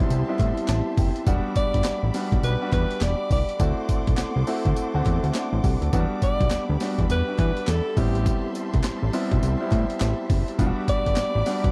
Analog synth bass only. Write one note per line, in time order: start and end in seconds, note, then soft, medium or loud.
0.10 0.24 C2 loud
0.39 0.53 A2 loud
0.69 0.82 A1 loud
0.97 1.11 F#1 loud
1.27 1.40 E1 loud
1.74 1.82 G1 medium
1.85 1.92 A1 medium
2.03 2.11 A1 loud
2.32 2.40 B1 medium
2.43 2.56 B1 loud
2.72 2.86 E2 loud
3.01 3.15 E1 loud
3.31 3.44 C2 medium
3.60 3.73 D2 loud
4.07 4.15 B1 medium
4.18 4.25 C2 medium
4.36 4.44 C2 medium
4.65 4.73 D2 medium
4.94 5.02 D2 medium
5.06 5.19 E2 loud
5.23 5.31 D2 medium
5.53 5.61 A1 loud
5.64 5.77 C2 loud
5.82 5.90 D2 medium
5.93 6.06 E2 loud
6.41 6.48 B1 medium
6.51 6.58 D2 medium
6.69 6.77 D2 medium
6.99 7.06 E2 medium
7.10 7.23 E2 loud
7.39 7.52 E3 loud
7.68 7.81 E2 medium
7.97 8.31 A1 loud
8.74 8.81 C2 medium
8.84 8.91 A1 medium
9.02 9.10 A1 loud
9.31 9.39 B1 medium
9.43 9.56 C2 loud
9.72 9.85 A2 loud
10.01 10.14 A1 loud
10.30 10.43 F#1 medium
10.59 10.72 E1 loud
11.06 11.14 G1 medium
11.17 11.24 A1 medium
11.35 11.43 A1 loud
11.64 11.72 B1 medium